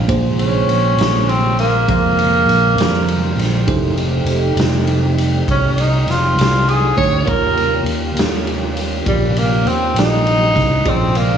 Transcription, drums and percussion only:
0.09 kick loud
0.09 ride medium
0.39 ride medium
0.69 ride medium
0.98 snare loud
0.98 ride medium
1.29 ride medium
1.59 ride medium
1.89 kick loud
1.89 ride medium
2.19 ride medium
2.49 ride medium
2.78 snare loud
2.78 ride medium
3.08 ride medium
3.39 snare soft
3.39 ride medium
3.68 kick loud
3.68 ride medium
3.97 ride medium
4.26 ride medium
4.57 snare loud
4.57 ride medium
4.87 ride medium
5.18 ride medium
5.48 kick loud
5.48 ride medium
5.78 ride medium
6.08 snare soft
6.08 ride soft
6.39 snare loud
6.39 ride medium
6.69 ride medium
6.98 kick medium
6.98 snare soft
6.98 ride medium
7.27 kick loud
7.27 ride medium
7.57 ride medium
7.86 ride medium
8.17 snare loud
8.17 ride medium
8.47 ride medium
8.77 ride medium
9.06 kick loud
9.06 ride medium
9.36 ride medium
9.67 ride medium
9.96 snare loud
9.96 ride medium
10.27 ride medium
10.56 kick medium
10.56 snare soft
10.56 ride medium
10.85 kick loud
10.85 ride medium
11.15 ride medium

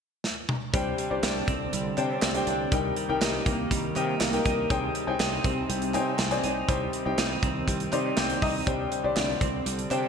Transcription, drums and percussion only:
0.24 snare medium
0.49 mid tom medium
0.74 kick loud
0.74 closed hi-hat medium
0.98 closed hi-hat medium
1.23 snare loud
1.23 clap medium
1.23 closed hi-hat medium
1.48 kick loud
1.48 closed hi-hat medium
1.73 closed hi-hat loud
1.97 clap medium
1.97 closed hi-hat medium
2.22 snare loud
2.22 clap medium
2.22 closed hi-hat medium
2.35 closed hi-hat medium
2.47 closed hi-hat medium
2.72 kick loud
2.72 closed hi-hat medium
2.96 closed hi-hat medium
3.22 snare loud
3.22 clap medium
3.22 closed hi-hat medium
3.46 kick loud
3.46 closed hi-hat medium
3.71 kick medium
3.71 closed hi-hat loud
3.96 clap medium
3.96 closed hi-hat medium
4.20 snare loud
4.20 clap medium
4.20 closed hi-hat medium
4.33 closed hi-hat medium
4.45 kick medium
4.45 closed hi-hat medium
4.70 kick loud
4.70 closed hi-hat medium
4.95 closed hi-hat medium
5.20 snare loud
5.20 clap medium
5.20 closed hi-hat medium
5.44 kick loud
5.44 closed hi-hat medium
5.70 closed hi-hat loud
5.82 closed hi-hat medium
5.94 clap medium
5.94 closed hi-hat medium
6.19 snare loud
6.19 clap medium
6.19 closed hi-hat medium
6.31 closed hi-hat medium
6.44 closed hi-hat medium
6.69 kick loud
6.69 closed hi-hat medium
6.93 closed hi-hat medium
7.18 snare loud
7.18 clap medium
7.18 closed hi-hat medium
7.43 kick loud
7.43 closed hi-hat medium
7.68 kick medium
7.68 closed hi-hat loud
7.80 closed hi-hat medium
7.92 clap medium
7.92 closed hi-hat medium
8.17 snare loud
8.17 clap medium
8.17 closed hi-hat medium
8.30 closed hi-hat medium
8.42 kick medium
8.42 open hi-hat medium
8.67 kick loud
8.67 closed hi-hat medium
8.92 closed hi-hat medium
9.16 snare loud
9.16 clap medium
9.16 closed hi-hat medium
9.41 kick loud
9.41 closed hi-hat medium
9.66 closed hi-hat loud
9.79 closed hi-hat soft
9.91 clap medium
9.91 closed hi-hat medium

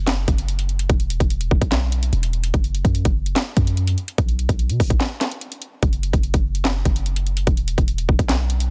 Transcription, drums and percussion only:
0.07 snare loud
0.07 clap loud
0.07 closed hi-hat medium
0.28 kick medium
0.28 closed hi-hat medium
0.38 closed hi-hat medium
0.48 closed hi-hat medium
0.59 closed hi-hat medium
0.69 closed hi-hat soft
0.79 closed hi-hat medium
0.90 kick loud
0.90 closed hi-hat medium
1.00 closed hi-hat medium
1.10 closed hi-hat medium
1.20 kick medium
1.20 closed hi-hat medium
1.30 closed hi-hat medium
1.41 closed hi-hat medium
1.51 kick loud
1.61 kick loud
1.61 closed hi-hat medium
1.72 snare loud
1.72 clap loud
1.72 closed hi-hat medium
1.92 closed hi-hat medium
2.03 closed hi-hat medium
2.13 closed hi-hat medium
2.23 closed hi-hat medium
2.33 closed hi-hat soft
2.44 closed hi-hat medium
2.54 kick loud
2.54 closed hi-hat medium
2.64 closed hi-hat medium
2.75 closed hi-hat medium
2.85 kick loud
2.85 closed hi-hat medium
2.95 closed hi-hat medium
3.05 kick medium
3.05 closed hi-hat medium
3.26 closed hi-hat medium
3.36 snare loud
3.36 clap loud
3.36 closed hi-hat medium
3.57 kick medium
3.57 closed hi-hat medium
3.67 closed hi-hat medium
3.77 closed hi-hat medium
3.87 closed hi-hat medium
3.98 closed hi-hat soft
4.08 closed hi-hat medium
4.18 kick loud
4.18 closed hi-hat medium
4.29 closed hi-hat medium
4.39 closed hi-hat medium
4.49 kick loud
4.49 closed hi-hat medium
4.59 closed hi-hat medium
4.70 closed hi-hat medium
4.80 kick loud
4.80 open hi-hat medium
4.90 kick loud
4.90 closed hi-hat medium
5.00 snare loud
5.00 clap loud
5.00 closed hi-hat medium
5.21 snare medium
5.21 clap medium
5.21 closed hi-hat medium
5.32 closed hi-hat medium
5.41 closed hi-hat medium
5.52 closed hi-hat medium
5.62 closed hi-hat medium
5.83 kick loud
5.83 closed hi-hat medium
5.93 closed hi-hat medium
6.03 closed hi-hat medium
6.13 kick loud
6.13 closed hi-hat medium
6.23 closed hi-hat medium
6.34 kick medium
6.34 closed hi-hat medium
6.55 closed hi-hat medium
6.65 snare loud
6.65 clap loud
6.65 closed hi-hat medium
6.85 kick medium
6.85 closed hi-hat medium
6.96 closed hi-hat medium
7.06 closed hi-hat medium
7.16 closed hi-hat medium
7.27 closed hi-hat soft
7.37 closed hi-hat medium
7.47 kick loud
7.47 closed hi-hat medium
7.57 closed hi-hat medium
7.68 closed hi-hat medium
7.78 kick medium
7.78 closed hi-hat medium
7.88 closed hi-hat medium
7.98 closed hi-hat medium
8.09 kick loud
8.19 kick loud
8.19 closed hi-hat medium
8.29 snare loud
8.29 clap medium
8.29 closed hi-hat medium
8.50 closed hi-hat medium
8.60 closed hi-hat medium

